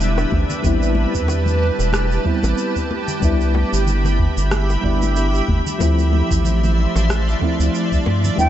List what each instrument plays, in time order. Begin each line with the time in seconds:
Already playing: analog synth bass E1, fm electric piano G3 B3 D4 E4, ambient pad D4 G4 B4 E5
0.00 shaker
0.18 high bongo, shaker
0.31 analog synth bass A1, ambient pad G4 A5, kick, high conga
0.50 low conga, shaker
0.62 analog synth bass A1, fm electric piano G3 B3 C4, kick, high bongo, shaker
0.66 fm electric piano E4
0.83 shaker
0.95 high conga
1.15 analog synth bass E2, kick, shaker
1.28 high bongo, low conga, shaker
1.46 high conga, low conga, shaker
1.79 analog synth bass E1, high bongo, shaker
1.93 cross-stick, high conga, shaker
2.12 shaker
2.24 fm electric piano G3 B3 C4 E4, kick
2.43 analog synth bass A1, high bongo, high conga, shaker
2.58 shaker
2.76 kick, shaker
2.90 ambient pad E5 B5, high bongo, high conga
3.08 low conga, shaker
3.20 analog synth bass C2, fm electric piano G3 B3 D4, kick, shaker
3.25 fm electric piano E4
3.41 shaker
3.54 high bongo, high conga
3.73 analog synth bass G1, shaker
3.87 low conga, shaker
4.05 high bongo, high conga, low conga, shaker
4.19 kick
4.37 analog synth bass G1, shaker
4.51 cross-stick, high conga, shaker
4.70 high bongo, shaker
4.81 analog synth bass G1, fm electric piano G3 B3 D4, kick
4.86 fm electric piano E4
5.02 high conga, shaker
5.16 high bongo, shaker
5.35 shaker
5.48 analog synth bass G1, kick, high conga
5.67 low conga, shaker
5.78 analog synth bass D2, fm electric piano F3 A3 C4, ambient pad F3 D5 C6, kick, high bongo, shaker
5.83 fm electric piano E4
5.99 shaker
6.13 high conga
6.31 analog synth bass A1, kick, high bongo, shaker
6.45 low conga, shaker
6.63 high conga, low conga, shaker
6.96 analog synth bass A1, high bongo, shaker
7.09 cross-stick, high conga, shaker
7.29 shaker
7.39 fm electric piano F3 A3 C4, kick, high bongo
7.44 fm electric piano E4
7.60 analog synth bass D2, high conga, shaker
7.75 shaker
7.92 analog synth bass C2, kick, shaker
8.06 analog synth bass G2, high bongo, high conga
8.24 low conga, shaker
8.36 analog synth bass E2, fm electric piano G3 B3 D4, ambient pad G4, flute G5, kick, shaker
8.40 fm electric piano E4